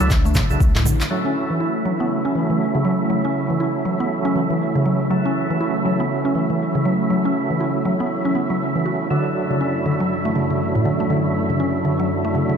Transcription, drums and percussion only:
0.10 kick, clap, muted conga, high conga, shaker
0.26 shaker
0.34 kick, clap, mid tom, high conga, low conga, shaker
0.50 shaker
0.60 kick, muted conga, shaker
0.76 clap
0.86 high conga, low conga, shaker
1.01 clap, muted conga, shaker

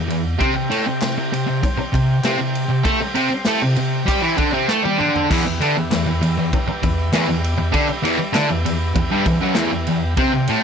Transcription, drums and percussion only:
0.10 ride
0.41 kick, ride
0.71 ride
1.02 snare, clap, ride
1.33 ride
1.63 kick, ride
1.94 kick, ride
2.24 snare, clap, ride
2.55 ride
2.85 kick, ride
3.15 ride
3.45 snare, clap, ride
3.76 ride
4.08 kick, clap, ride
4.38 kick, ride
4.68 snare, clap
4.85 high tom
5.00 mid tom
5.16 floor tom
5.31 kick, crash
5.61 ride
5.92 snare, clap, ride
6.22 ride
6.53 kick, ride
6.83 kick, ride
7.13 snare, clap, ride
7.44 ride
7.73 kick, ride
8.05 ride
8.35 snare, clap, ride
8.66 ride
8.95 kick, ride
9.26 kick, ride
9.55 snare, clap, ride
9.87 ride
10.17 kick, ride
10.47 ride

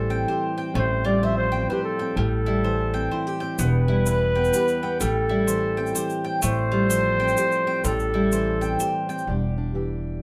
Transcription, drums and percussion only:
3.59 shaker
4.06 shaker
4.44 shaker
4.53 shaker
4.68 shaker
5.01 shaker
5.48 shaker
5.87 shaker
5.95 shaker
6.10 shaker
6.42 shaker
6.90 shaker
7.28 shaker
7.37 shaker
7.52 shaker
7.84 shaker
8.00 shaker
8.32 shaker
8.62 shaker
8.80 shaker
9.09 shaker
9.18 shaker

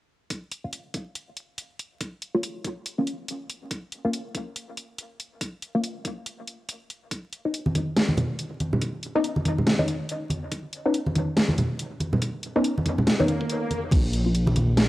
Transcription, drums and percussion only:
0.30 kick, closed hi-hat
0.52 closed hi-hat
0.73 closed hi-hat
0.94 kick, closed hi-hat
1.15 closed hi-hat
1.37 closed hi-hat
1.58 closed hi-hat
1.79 closed hi-hat
2.01 kick, closed hi-hat
2.22 closed hi-hat
2.43 closed hi-hat
2.64 kick, closed hi-hat
2.86 closed hi-hat
3.07 closed hi-hat
3.28 closed hi-hat
3.50 closed hi-hat
3.71 kick, closed hi-hat
3.92 closed hi-hat
4.13 closed hi-hat
4.35 kick, closed hi-hat
4.56 closed hi-hat
4.77 closed hi-hat
4.98 closed hi-hat
5.20 closed hi-hat
5.41 kick, closed hi-hat
5.62 closed hi-hat
5.83 closed hi-hat
6.05 kick, closed hi-hat
6.26 closed hi-hat
6.47 closed hi-hat
6.69 closed hi-hat
6.90 closed hi-hat
7.11 kick, closed hi-hat
7.33 closed hi-hat
7.54 closed hi-hat
7.66 high conga
7.75 kick, closed hi-hat, high conga
7.97 snare, closed hi-hat
8.09 high conga
8.17 closed hi-hat, low conga
8.39 closed hi-hat
8.60 closed hi-hat, high conga
8.73 low conga
8.81 kick, closed hi-hat
9.03 closed hi-hat
9.24 closed hi-hat
9.36 high conga
9.45 kick, closed hi-hat, high conga
9.58 low conga
9.67 snare, closed hi-hat
9.79 high conga
9.88 closed hi-hat
10.09 closed hi-hat
10.30 closed hi-hat, high conga
10.52 kick, closed hi-hat
10.73 closed hi-hat
10.94 closed hi-hat
11.06 high conga
11.15 kick, closed hi-hat, high conga
11.37 snare, closed hi-hat
11.49 high conga
11.58 closed hi-hat, low conga
11.79 closed hi-hat
12.00 closed hi-hat, high conga
12.13 low conga
12.22 kick, closed hi-hat
12.43 closed hi-hat
12.64 closed hi-hat
12.78 high conga
12.86 kick, closed hi-hat, high conga
12.98 low conga
13.07 snare, closed hi-hat
13.20 high conga
13.28 closed hi-hat
13.41 kick
13.49 closed hi-hat
13.71 closed hi-hat, high conga
13.91 kick, closed hi-hat, crash, muted conga
14.13 closed hi-hat
14.35 closed hi-hat
14.47 muted conga, high conga
14.56 closed hi-hat, high conga
14.77 snare, closed hi-hat

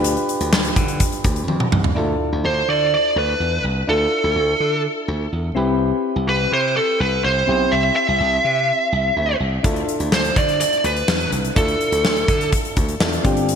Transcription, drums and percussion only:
0.04 closed hi-hat
0.17 closed hi-hat
0.29 closed hi-hat
0.41 closed hi-hat
0.53 snare
0.65 closed hi-hat
0.76 kick, closed hi-hat
0.88 closed hi-hat
1.00 kick, closed hi-hat
1.12 closed hi-hat
1.24 kick, closed hi-hat
1.36 closed hi-hat
1.48 high tom
1.60 mid tom
1.72 mid tom
1.84 floor tom
9.64 kick, closed hi-hat
9.76 closed hi-hat
9.88 closed hi-hat
10.00 closed hi-hat
10.12 snare
10.24 closed hi-hat
10.36 kick, closed hi-hat
10.49 closed hi-hat
10.61 closed hi-hat
10.73 closed hi-hat
10.84 closed hi-hat
10.96 closed hi-hat
11.08 snare
11.20 closed hi-hat
11.32 closed hi-hat
11.45 closed hi-hat
11.56 kick, closed hi-hat
11.68 closed hi-hat
11.81 closed hi-hat
11.92 closed hi-hat
12.05 snare
12.16 closed hi-hat
12.28 kick, closed hi-hat
12.41 closed hi-hat
12.52 kick, closed hi-hat
12.65 closed hi-hat
12.76 kick, closed hi-hat
12.88 closed hi-hat
13.00 snare
13.13 closed hi-hat
13.25 kick, closed hi-hat
13.37 closed hi-hat
13.49 closed hi-hat

